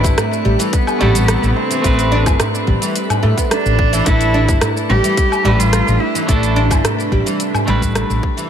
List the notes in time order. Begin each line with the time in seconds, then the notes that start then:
Already playing: A3 C4 D4 E4 G4 A4 B4 E5 B5
0.04 G1 E4, kick, closed hi-hat, darbuka ka, shaker
0.18 A3, cross-stick, closed hi-hat, darbuka dum, shaker
0.33 shaker
0.45 A1 G3
0.59 E3, closed hi-hat, shaker
0.73 B3, kick, closed hi-hat, shaker
0.87 darbuka ka, low woodblock, shaker
0.99 A1 C3 G3 A3 E4 G4 A4, darbuka tek, darbuka dum
1.15 closed hi-hat, shaker
1.28 cross-stick, closed hi-hat, shaker
1.43 A1, darbuka ka, shaker
1.56 C4, darbuka ka
1.71 E3, closed hi-hat, shaker
1.82 A1 A3 C4 E4 G4, kick, closed hi-hat, shaker
1.86 B4
1.99 closed hi-hat, shaker
2.12 D4
2.26 G1 E4, kick, closed hi-hat, darbuka ka, low woodblock, shaker
2.40 cross-stick, closed hi-hat, darbuka dum, shaker
2.55 shaker
2.67 A1 G3, kick
2.82 E3, closed hi-hat, darbuka tek, shaker
2.96 closed hi-hat, shaker
3.10 closed hi-hat, darbuka dum, low woodblock, shaker
3.23 A2 A3, darbuka tek
3.37 B3, kick, closed hi-hat, shaker
3.51 D4, cross-stick, closed hi-hat, shaker
3.66 A1, shaker
3.79 kick
3.93 E3, closed hi-hat, shaker
4.04 A1 A3 D4 E4 A4, kick, closed hi-hat, shaker
4.19 D4, closed hi-hat, shaker
4.34 D4
4.48 G1 E4, kick, closed hi-hat, darbuka ka, shaker
4.61 G4, cross-stick, closed hi-hat, darbuka dum, shaker
4.77 shaker
4.89 A1 G3 G4
5.04 E3, closed hi-hat, shaker
5.17 kick, closed hi-hat, shaker
5.22 C3
5.32 darbuka ka, low woodblock, shaker
5.43 A1 G3 A3 D4 B4 E5, darbuka tek, darbuka dum
5.59 F4, closed hi-hat, shaker
5.73 cross-stick, closed hi-hat, shaker
5.87 A1, darbuka ka, shaker
6.00 E4, darbuka ka
6.15 E3, closed hi-hat, shaker
6.27 A1 A3 D4 E4 A4, kick, closed hi-hat, shaker
6.43 closed hi-hat, shaker
6.56 D4
6.70 G1 E4, kick, closed hi-hat, darbuka ka, low woodblock, shaker
6.84 cross-stick, closed hi-hat, darbuka dum, shaker
7.00 shaker
7.12 A1 G3, kick
7.26 E3, closed hi-hat, darbuka tek, shaker
7.40 closed hi-hat, shaker
7.54 darbuka dum, low woodblock, shaker
7.66 A1 G3 A3 D4 E4, darbuka tek
7.70 B4
7.82 kick, closed hi-hat, shaker
7.95 cross-stick, closed hi-hat, shaker
8.10 A1, shaker
8.23 kick
8.37 E3, closed hi-hat, shaker